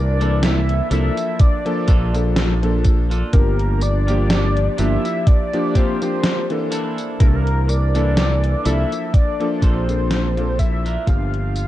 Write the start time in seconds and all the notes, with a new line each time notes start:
Already playing: C2 E3 A#3 D4 A#4 D5
0.20 E3 A#3 D4 E4 A4, closed hi-hat, tambourine
0.43 E5, snare, closed hi-hat, tambourine
0.69 closed hi-hat
0.90 C2 F3 A#3 D4 E4 A4 E5, closed hi-hat, tambourine
1.17 closed hi-hat, tambourine
1.40 D5, kick, closed hi-hat, tambourine
1.65 F3 A#3 D4 A4, closed hi-hat
1.87 A#1 A#3 D4 F4 A4, kick, closed hi-hat, tambourine
2.14 F3 A#3 D4 A4, closed hi-hat, tambourine
2.36 snare, closed hi-hat, tambourine
2.62 F3 A#3 D4 A4, closed hi-hat
2.84 muted clean electric guitar stroke, kick, closed hi-hat, tambourine
3.10 A#3 D4 F4 A4, closed hi-hat, tambourine
3.33 G1 F3 A#3 D4 G4 A#4, kick, closed hi-hat, tambourine
3.59 closed hi-hat
3.81 D5, muted clean electric guitar stroke, tambourine
4.07 F3 A#3 D4 F4 G4, closed hi-hat, tambourine
4.30 snare, closed hi-hat, tambourine
4.57 closed hi-hat
4.77 G1 F3 A#3 D4 F4 G4 E5, closed hi-hat, tambourine
5.05 closed hi-hat, tambourine
5.27 D5, kick, closed hi-hat, tambourine
5.53 F3 A#3 D4 G4, closed hi-hat
5.74 A#3 D4 F4 G4 C5, kick, closed hi-hat, tambourine
6.01 F3 A#3 D4 G4, closed hi-hat, tambourine
6.23 snare, closed hi-hat, tambourine
6.50 E3 A#3 D4 A4, closed hi-hat
6.71 A#3 D4 E4 A4, closed hi-hat, tambourine
6.98 closed hi-hat, tambourine
7.20 C2 E3 A#3 D4 A#4, kick, closed hi-hat, tambourine
7.28 A4
7.36 A#4
7.47 closed hi-hat
7.68 D5, muted clean electric guitar stroke, tambourine
7.95 E3 A#3 D4 E4 A4, closed hi-hat, tambourine
8.17 snare, closed hi-hat, tambourine
8.44 closed hi-hat
8.64 C2 F3 A#3 D4 E4 A4 E5, closed hi-hat, tambourine
8.92 closed hi-hat, tambourine
9.14 D5, kick, closed hi-hat, tambourine
9.40 F3 A#3 D4 A4, closed hi-hat
9.62 A#1 A#3 D4 F4 A4 C5, kick, closed hi-hat, tambourine
9.89 F3 A#3 D4 A4, closed hi-hat, tambourine
10.11 snare, closed hi-hat, tambourine
10.37 F3 A#3 D4 A4, closed hi-hat
10.58 E5, muted clean electric guitar stroke, kick, closed hi-hat, tambourine
10.85 A#3 D4 F4 A#4, closed hi-hat, tambourine
11.06 G1 F3 A#3 D4 G4 F5, kick, closed hi-hat, tambourine
11.34 closed hi-hat
11.55 muted clean electric guitar stroke, tambourine